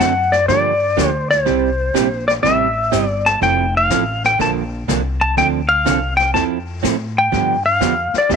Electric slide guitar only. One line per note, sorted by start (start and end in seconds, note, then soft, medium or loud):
0.00 0.34 F#5 loud
0.32 0.47 D5 medium
0.48 1.11 D5 medium
1.11 1.30 C5 medium
1.31 2.27 C5 medium
2.28 2.33 D5 medium
2.43 3.06 E5 medium
3.06 3.28 D5 medium
3.26 3.42 A5 medium
3.43 3.76 G5 loud
3.77 4.25 F5 medium
4.26 4.41 G5 medium
4.41 4.50 A5 medium
5.21 5.37 A5 medium
5.38 5.47 G5 loud
5.69 6.16 F5 loud
6.17 6.34 G5 medium
6.34 6.43 A5 medium
7.18 7.65 G5 loud
7.66 8.16 F5 loud
8.18 8.32 D5 medium